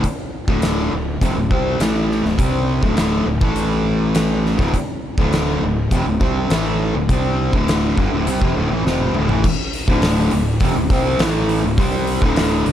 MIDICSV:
0, 0, Header, 1, 4, 480
1, 0, Start_track
1, 0, Key_signature, -1, "minor"
1, 0, Tempo, 587084
1, 29, Time_signature, 4, 2, 24, 8
1, 10400, End_track
2, 0, Start_track
2, 0, Title_t, "Distorted electric guitar"
2, 0, Program_c, 0, 30
2, 389, Note_on_c, 0, 38, 75
2, 392, Note_on_c, 0, 45, 88
2, 398, Note_on_c, 0, 50, 103
2, 744, Note_off_c, 0, 38, 0
2, 745, Note_off_c, 0, 45, 0
2, 748, Note_off_c, 0, 50, 0
2, 752, Note_on_c, 0, 38, 70
2, 754, Note_on_c, 0, 45, 66
2, 944, Note_off_c, 0, 38, 0
2, 945, Note_off_c, 0, 45, 0
2, 993, Note_on_c, 0, 41, 89
2, 995, Note_on_c, 0, 48, 106
2, 1106, Note_off_c, 0, 41, 0
2, 1107, Note_off_c, 0, 48, 0
2, 1115, Note_on_c, 0, 38, 65
2, 1117, Note_on_c, 0, 45, 75
2, 1227, Note_off_c, 0, 38, 0
2, 1231, Note_on_c, 0, 48, 86
2, 1234, Note_off_c, 0, 45, 0
2, 1237, Note_on_c, 0, 55, 89
2, 1239, Note_on_c, 0, 60, 94
2, 1465, Note_off_c, 0, 48, 0
2, 1468, Note_off_c, 0, 55, 0
2, 1469, Note_off_c, 0, 60, 0
2, 1472, Note_on_c, 0, 45, 97
2, 1476, Note_on_c, 0, 52, 96
2, 1484, Note_on_c, 0, 57, 95
2, 1824, Note_off_c, 0, 45, 0
2, 1828, Note_off_c, 0, 52, 0
2, 1830, Note_on_c, 0, 38, 71
2, 1832, Note_off_c, 0, 57, 0
2, 1834, Note_on_c, 0, 45, 83
2, 1941, Note_off_c, 0, 38, 0
2, 1944, Note_off_c, 0, 45, 0
2, 1944, Note_on_c, 0, 48, 96
2, 1948, Note_on_c, 0, 55, 95
2, 1953, Note_on_c, 0, 60, 110
2, 2303, Note_off_c, 0, 48, 0
2, 2304, Note_off_c, 0, 55, 0
2, 2307, Note_off_c, 0, 60, 0
2, 2311, Note_on_c, 0, 38, 89
2, 2319, Note_on_c, 0, 45, 95
2, 2320, Note_on_c, 0, 50, 97
2, 2658, Note_off_c, 0, 38, 0
2, 2660, Note_off_c, 0, 45, 0
2, 2668, Note_on_c, 0, 38, 62
2, 2670, Note_on_c, 0, 45, 81
2, 2671, Note_off_c, 0, 50, 0
2, 2777, Note_off_c, 0, 45, 0
2, 2784, Note_off_c, 0, 38, 0
2, 2787, Note_on_c, 0, 45, 94
2, 2789, Note_on_c, 0, 52, 91
2, 2796, Note_on_c, 0, 57, 107
2, 3741, Note_off_c, 0, 45, 0
2, 3746, Note_on_c, 0, 38, 109
2, 3747, Note_off_c, 0, 52, 0
2, 3750, Note_off_c, 0, 57, 0
2, 3751, Note_on_c, 0, 45, 97
2, 3864, Note_off_c, 0, 38, 0
2, 3867, Note_off_c, 0, 45, 0
2, 4237, Note_on_c, 0, 38, 87
2, 4244, Note_on_c, 0, 45, 93
2, 4244, Note_on_c, 0, 50, 96
2, 4590, Note_off_c, 0, 38, 0
2, 4594, Note_off_c, 0, 45, 0
2, 4594, Note_off_c, 0, 50, 0
2, 4601, Note_on_c, 0, 38, 68
2, 4603, Note_on_c, 0, 45, 72
2, 4792, Note_off_c, 0, 38, 0
2, 4792, Note_off_c, 0, 45, 0
2, 4840, Note_on_c, 0, 41, 94
2, 4847, Note_on_c, 0, 48, 103
2, 4952, Note_off_c, 0, 41, 0
2, 4955, Note_off_c, 0, 48, 0
2, 4957, Note_on_c, 0, 38, 68
2, 4959, Note_on_c, 0, 45, 77
2, 5065, Note_off_c, 0, 38, 0
2, 5068, Note_off_c, 0, 45, 0
2, 5069, Note_on_c, 0, 48, 96
2, 5071, Note_on_c, 0, 55, 101
2, 5074, Note_on_c, 0, 60, 115
2, 5306, Note_off_c, 0, 48, 0
2, 5307, Note_off_c, 0, 55, 0
2, 5309, Note_off_c, 0, 60, 0
2, 5315, Note_on_c, 0, 45, 99
2, 5318, Note_on_c, 0, 52, 96
2, 5324, Note_on_c, 0, 57, 104
2, 5667, Note_off_c, 0, 45, 0
2, 5671, Note_off_c, 0, 52, 0
2, 5674, Note_off_c, 0, 57, 0
2, 5677, Note_on_c, 0, 45, 72
2, 5679, Note_on_c, 0, 38, 69
2, 5797, Note_off_c, 0, 45, 0
2, 5798, Note_off_c, 0, 38, 0
2, 5806, Note_on_c, 0, 48, 100
2, 5808, Note_on_c, 0, 55, 95
2, 5816, Note_on_c, 0, 60, 111
2, 6154, Note_off_c, 0, 48, 0
2, 6156, Note_off_c, 0, 55, 0
2, 6157, Note_on_c, 0, 38, 87
2, 6159, Note_on_c, 0, 45, 88
2, 6160, Note_off_c, 0, 60, 0
2, 6166, Note_on_c, 0, 50, 96
2, 6510, Note_off_c, 0, 38, 0
2, 6511, Note_off_c, 0, 45, 0
2, 6515, Note_off_c, 0, 50, 0
2, 6522, Note_on_c, 0, 43, 84
2, 6528, Note_on_c, 0, 50, 95
2, 6633, Note_off_c, 0, 43, 0
2, 6636, Note_off_c, 0, 50, 0
2, 6641, Note_on_c, 0, 38, 91
2, 6647, Note_on_c, 0, 45, 102
2, 6752, Note_off_c, 0, 38, 0
2, 6755, Note_off_c, 0, 45, 0
2, 6764, Note_on_c, 0, 48, 105
2, 6770, Note_on_c, 0, 55, 105
2, 6874, Note_off_c, 0, 48, 0
2, 6877, Note_off_c, 0, 55, 0
2, 6880, Note_on_c, 0, 41, 93
2, 6885, Note_on_c, 0, 48, 110
2, 6991, Note_off_c, 0, 41, 0
2, 6994, Note_off_c, 0, 48, 0
2, 7002, Note_on_c, 0, 38, 90
2, 7004, Note_on_c, 0, 45, 105
2, 7109, Note_off_c, 0, 45, 0
2, 7112, Note_off_c, 0, 38, 0
2, 7119, Note_on_c, 0, 45, 90
2, 7123, Note_on_c, 0, 52, 97
2, 7231, Note_off_c, 0, 45, 0
2, 7233, Note_off_c, 0, 52, 0
2, 7237, Note_on_c, 0, 41, 89
2, 7241, Note_on_c, 0, 48, 88
2, 7249, Note_on_c, 0, 53, 104
2, 7470, Note_off_c, 0, 41, 0
2, 7472, Note_off_c, 0, 48, 0
2, 7476, Note_off_c, 0, 53, 0
2, 7482, Note_on_c, 0, 38, 94
2, 7487, Note_on_c, 0, 45, 101
2, 7592, Note_off_c, 0, 38, 0
2, 7592, Note_off_c, 0, 45, 0
2, 7602, Note_on_c, 0, 45, 96
2, 7605, Note_on_c, 0, 52, 96
2, 7712, Note_off_c, 0, 45, 0
2, 7714, Note_off_c, 0, 52, 0
2, 8082, Note_on_c, 0, 38, 101
2, 8084, Note_on_c, 0, 45, 98
2, 8091, Note_on_c, 0, 50, 104
2, 8431, Note_off_c, 0, 38, 0
2, 8432, Note_off_c, 0, 45, 0
2, 8436, Note_off_c, 0, 50, 0
2, 8445, Note_on_c, 0, 38, 65
2, 8445, Note_on_c, 0, 45, 75
2, 8632, Note_off_c, 0, 38, 0
2, 8632, Note_off_c, 0, 45, 0
2, 8679, Note_on_c, 0, 41, 89
2, 8687, Note_on_c, 0, 48, 109
2, 8790, Note_off_c, 0, 41, 0
2, 8793, Note_off_c, 0, 48, 0
2, 8811, Note_on_c, 0, 38, 66
2, 8811, Note_on_c, 0, 45, 76
2, 8920, Note_off_c, 0, 38, 0
2, 8923, Note_off_c, 0, 45, 0
2, 8923, Note_on_c, 0, 48, 95
2, 8931, Note_on_c, 0, 55, 92
2, 8932, Note_on_c, 0, 60, 107
2, 9151, Note_off_c, 0, 48, 0
2, 9155, Note_off_c, 0, 55, 0
2, 9156, Note_off_c, 0, 60, 0
2, 9165, Note_on_c, 0, 45, 85
2, 9165, Note_on_c, 0, 52, 100
2, 9170, Note_on_c, 0, 57, 105
2, 9511, Note_off_c, 0, 45, 0
2, 9512, Note_off_c, 0, 52, 0
2, 9514, Note_off_c, 0, 57, 0
2, 9518, Note_on_c, 0, 38, 65
2, 9524, Note_on_c, 0, 45, 86
2, 9631, Note_off_c, 0, 38, 0
2, 9635, Note_on_c, 0, 48, 98
2, 9636, Note_off_c, 0, 45, 0
2, 9639, Note_on_c, 0, 55, 111
2, 9643, Note_on_c, 0, 60, 120
2, 9986, Note_off_c, 0, 48, 0
2, 9988, Note_off_c, 0, 55, 0
2, 9990, Note_off_c, 0, 60, 0
2, 9996, Note_on_c, 0, 38, 97
2, 9998, Note_on_c, 0, 45, 98
2, 10003, Note_on_c, 0, 50, 106
2, 10346, Note_off_c, 0, 38, 0
2, 10347, Note_off_c, 0, 45, 0
2, 10350, Note_off_c, 0, 50, 0
2, 10359, Note_on_c, 0, 38, 70
2, 10360, Note_on_c, 0, 45, 76
2, 10400, Note_off_c, 0, 38, 0
2, 10400, Note_off_c, 0, 45, 0
2, 10400, End_track
3, 0, Start_track
3, 0, Title_t, "Fingered electric bass"
3, 0, Program_c, 1, 33
3, 391, Note_on_c, 1, 26, 93
3, 726, Note_off_c, 1, 26, 0
3, 758, Note_on_c, 1, 26, 75
3, 979, Note_off_c, 1, 26, 0
3, 991, Note_on_c, 1, 29, 89
3, 1104, Note_off_c, 1, 29, 0
3, 1110, Note_on_c, 1, 26, 75
3, 1223, Note_off_c, 1, 26, 0
3, 1231, Note_on_c, 1, 36, 91
3, 1456, Note_off_c, 1, 36, 0
3, 1469, Note_on_c, 1, 33, 96
3, 1807, Note_off_c, 1, 33, 0
3, 1825, Note_on_c, 1, 26, 81
3, 1941, Note_off_c, 1, 26, 0
3, 1951, Note_on_c, 1, 36, 96
3, 2288, Note_off_c, 1, 36, 0
3, 2310, Note_on_c, 1, 26, 98
3, 2648, Note_off_c, 1, 26, 0
3, 2664, Note_on_c, 1, 26, 76
3, 2781, Note_off_c, 1, 26, 0
3, 2792, Note_on_c, 1, 33, 91
3, 3722, Note_off_c, 1, 33, 0
3, 3754, Note_on_c, 1, 26, 97
3, 3867, Note_off_c, 1, 26, 0
3, 4233, Note_on_c, 1, 26, 96
3, 4570, Note_off_c, 1, 26, 0
3, 4594, Note_on_c, 1, 26, 76
3, 4819, Note_off_c, 1, 26, 0
3, 4834, Note_on_c, 1, 29, 97
3, 4947, Note_off_c, 1, 29, 0
3, 4957, Note_on_c, 1, 26, 77
3, 5069, Note_off_c, 1, 26, 0
3, 5074, Note_on_c, 1, 36, 89
3, 5299, Note_off_c, 1, 36, 0
3, 5314, Note_on_c, 1, 33, 93
3, 5651, Note_off_c, 1, 33, 0
3, 5679, Note_on_c, 1, 26, 80
3, 5790, Note_off_c, 1, 26, 0
3, 5797, Note_on_c, 1, 36, 97
3, 6132, Note_off_c, 1, 36, 0
3, 6158, Note_on_c, 1, 26, 95
3, 6493, Note_off_c, 1, 26, 0
3, 6522, Note_on_c, 1, 31, 88
3, 6631, Note_off_c, 1, 31, 0
3, 6639, Note_on_c, 1, 26, 90
3, 6750, Note_off_c, 1, 26, 0
3, 6761, Note_on_c, 1, 36, 94
3, 6871, Note_off_c, 1, 36, 0
3, 6881, Note_on_c, 1, 29, 88
3, 6991, Note_off_c, 1, 29, 0
3, 7005, Note_on_c, 1, 26, 87
3, 7113, Note_off_c, 1, 26, 0
3, 7125, Note_on_c, 1, 33, 94
3, 7231, Note_off_c, 1, 33, 0
3, 7236, Note_on_c, 1, 29, 96
3, 7459, Note_off_c, 1, 29, 0
3, 7477, Note_on_c, 1, 26, 98
3, 7588, Note_off_c, 1, 26, 0
3, 7596, Note_on_c, 1, 33, 91
3, 7708, Note_off_c, 1, 33, 0
3, 8077, Note_on_c, 1, 26, 93
3, 8411, Note_off_c, 1, 26, 0
3, 8442, Note_on_c, 1, 26, 84
3, 8662, Note_off_c, 1, 26, 0
3, 8674, Note_on_c, 1, 29, 95
3, 8786, Note_off_c, 1, 29, 0
3, 8799, Note_on_c, 1, 26, 75
3, 8909, Note_off_c, 1, 26, 0
3, 8914, Note_on_c, 1, 36, 89
3, 9137, Note_off_c, 1, 36, 0
3, 9155, Note_on_c, 1, 33, 100
3, 9488, Note_off_c, 1, 33, 0
3, 9516, Note_on_c, 1, 26, 84
3, 9623, Note_off_c, 1, 26, 0
3, 9628, Note_on_c, 1, 36, 108
3, 9965, Note_off_c, 1, 36, 0
3, 9990, Note_on_c, 1, 26, 105
3, 10326, Note_off_c, 1, 26, 0
3, 10354, Note_on_c, 1, 26, 85
3, 10400, Note_off_c, 1, 26, 0
3, 10400, End_track
4, 0, Start_track
4, 0, Title_t, "Drums"
4, 31, Note_on_c, 9, 36, 94
4, 32, Note_on_c, 9, 42, 68
4, 113, Note_off_c, 9, 36, 0
4, 113, Note_off_c, 9, 42, 0
4, 391, Note_on_c, 9, 36, 104
4, 473, Note_off_c, 9, 36, 0
4, 508, Note_on_c, 9, 42, 69
4, 517, Note_on_c, 9, 38, 107
4, 590, Note_off_c, 9, 42, 0
4, 599, Note_off_c, 9, 38, 0
4, 993, Note_on_c, 9, 36, 100
4, 997, Note_on_c, 9, 42, 61
4, 1075, Note_off_c, 9, 36, 0
4, 1078, Note_off_c, 9, 42, 0
4, 1233, Note_on_c, 9, 36, 106
4, 1315, Note_off_c, 9, 36, 0
4, 1473, Note_on_c, 9, 42, 67
4, 1482, Note_on_c, 9, 38, 116
4, 1555, Note_off_c, 9, 42, 0
4, 1564, Note_off_c, 9, 38, 0
4, 1727, Note_on_c, 9, 38, 29
4, 1808, Note_off_c, 9, 38, 0
4, 1840, Note_on_c, 9, 38, 34
4, 1921, Note_off_c, 9, 38, 0
4, 1951, Note_on_c, 9, 36, 105
4, 1953, Note_on_c, 9, 42, 66
4, 2033, Note_off_c, 9, 36, 0
4, 2035, Note_off_c, 9, 42, 0
4, 2311, Note_on_c, 9, 36, 100
4, 2393, Note_off_c, 9, 36, 0
4, 2427, Note_on_c, 9, 42, 72
4, 2436, Note_on_c, 9, 38, 111
4, 2509, Note_off_c, 9, 42, 0
4, 2518, Note_off_c, 9, 38, 0
4, 2791, Note_on_c, 9, 36, 121
4, 2873, Note_off_c, 9, 36, 0
4, 2909, Note_on_c, 9, 42, 72
4, 2991, Note_off_c, 9, 42, 0
4, 3390, Note_on_c, 9, 42, 79
4, 3399, Note_on_c, 9, 38, 122
4, 3472, Note_off_c, 9, 42, 0
4, 3481, Note_off_c, 9, 38, 0
4, 3646, Note_on_c, 9, 38, 32
4, 3728, Note_off_c, 9, 38, 0
4, 3752, Note_on_c, 9, 36, 110
4, 3764, Note_on_c, 9, 38, 35
4, 3834, Note_off_c, 9, 36, 0
4, 3846, Note_off_c, 9, 38, 0
4, 3873, Note_on_c, 9, 36, 95
4, 3876, Note_on_c, 9, 42, 74
4, 3954, Note_off_c, 9, 36, 0
4, 3958, Note_off_c, 9, 42, 0
4, 4233, Note_on_c, 9, 36, 106
4, 4315, Note_off_c, 9, 36, 0
4, 4355, Note_on_c, 9, 42, 73
4, 4364, Note_on_c, 9, 38, 111
4, 4436, Note_off_c, 9, 42, 0
4, 4445, Note_off_c, 9, 38, 0
4, 4834, Note_on_c, 9, 36, 105
4, 4835, Note_on_c, 9, 42, 70
4, 4916, Note_off_c, 9, 36, 0
4, 4916, Note_off_c, 9, 42, 0
4, 5076, Note_on_c, 9, 36, 112
4, 5158, Note_off_c, 9, 36, 0
4, 5317, Note_on_c, 9, 42, 70
4, 5326, Note_on_c, 9, 38, 115
4, 5399, Note_off_c, 9, 42, 0
4, 5408, Note_off_c, 9, 38, 0
4, 5798, Note_on_c, 9, 36, 108
4, 5798, Note_on_c, 9, 42, 68
4, 5880, Note_off_c, 9, 36, 0
4, 5880, Note_off_c, 9, 42, 0
4, 6158, Note_on_c, 9, 36, 99
4, 6240, Note_off_c, 9, 36, 0
4, 6281, Note_on_c, 9, 42, 66
4, 6290, Note_on_c, 9, 38, 108
4, 6363, Note_off_c, 9, 42, 0
4, 6372, Note_off_c, 9, 38, 0
4, 6521, Note_on_c, 9, 36, 106
4, 6602, Note_off_c, 9, 36, 0
4, 6762, Note_on_c, 9, 42, 70
4, 6844, Note_off_c, 9, 42, 0
4, 6880, Note_on_c, 9, 36, 104
4, 6962, Note_off_c, 9, 36, 0
4, 7250, Note_on_c, 9, 38, 66
4, 7332, Note_off_c, 9, 38, 0
4, 7359, Note_on_c, 9, 48, 70
4, 7441, Note_off_c, 9, 48, 0
4, 7476, Note_on_c, 9, 45, 76
4, 7558, Note_off_c, 9, 45, 0
4, 7597, Note_on_c, 9, 43, 98
4, 7679, Note_off_c, 9, 43, 0
4, 7718, Note_on_c, 9, 49, 121
4, 7719, Note_on_c, 9, 36, 107
4, 7800, Note_off_c, 9, 36, 0
4, 7800, Note_off_c, 9, 49, 0
4, 7958, Note_on_c, 9, 46, 65
4, 8040, Note_off_c, 9, 46, 0
4, 8076, Note_on_c, 9, 36, 102
4, 8158, Note_off_c, 9, 36, 0
4, 8192, Note_on_c, 9, 46, 87
4, 8201, Note_on_c, 9, 38, 111
4, 8274, Note_off_c, 9, 46, 0
4, 8283, Note_off_c, 9, 38, 0
4, 8431, Note_on_c, 9, 46, 58
4, 8512, Note_off_c, 9, 46, 0
4, 8667, Note_on_c, 9, 46, 80
4, 8672, Note_on_c, 9, 36, 98
4, 8749, Note_off_c, 9, 46, 0
4, 8754, Note_off_c, 9, 36, 0
4, 8912, Note_on_c, 9, 36, 114
4, 8913, Note_on_c, 9, 46, 60
4, 8994, Note_off_c, 9, 36, 0
4, 8995, Note_off_c, 9, 46, 0
4, 9151, Note_on_c, 9, 46, 88
4, 9160, Note_on_c, 9, 38, 119
4, 9233, Note_off_c, 9, 46, 0
4, 9242, Note_off_c, 9, 38, 0
4, 9394, Note_on_c, 9, 46, 61
4, 9476, Note_off_c, 9, 46, 0
4, 9630, Note_on_c, 9, 36, 113
4, 9632, Note_on_c, 9, 46, 80
4, 9712, Note_off_c, 9, 36, 0
4, 9714, Note_off_c, 9, 46, 0
4, 9870, Note_on_c, 9, 46, 57
4, 9952, Note_off_c, 9, 46, 0
4, 9990, Note_on_c, 9, 36, 105
4, 10071, Note_off_c, 9, 36, 0
4, 10108, Note_on_c, 9, 46, 91
4, 10117, Note_on_c, 9, 38, 117
4, 10190, Note_off_c, 9, 46, 0
4, 10199, Note_off_c, 9, 38, 0
4, 10351, Note_on_c, 9, 46, 61
4, 10400, Note_off_c, 9, 46, 0
4, 10400, End_track
0, 0, End_of_file